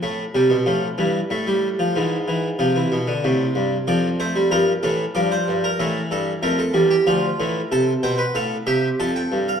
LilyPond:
<<
  \new Staff \with { instrumentName = "Harpsichord" } { \time 3/4 \key a \phrygian \tempo 4 = 94 r2. | r2. | d''8 c''8 bes'8 a'8 d''16 c''8 bes'16 | a'8 a'8 bes'16 a'8 g'16 f'4 |
a'8 c''16 b'16 a'8 g'8 a'4 | }
  \new Staff \with { instrumentName = "Harpsichord" } { \clef bass \time 3/4 \key a \phrygian << { a8 g8 f8 e8 a16 g8 f16 | e8 e8 f16 e8 d16 c4 | f8 a16 g16 f8 e8 f4 | e4 a8 g8 f8 e8 |
a''8 g''8 f''8 e''8 a''16 g''8 f''16 | } \\ { a,8 c16 b,16 a,8 g,8 a,4 | gis,4 c8 b,8 a,8 g,8 | f,4 g,8 a,8 g,8 g,8 | a,8 g,8 f,8 e,8 d,8 a,8 |
c8 b,8 a,8 c8 f,8 g,8 | } >> }
>>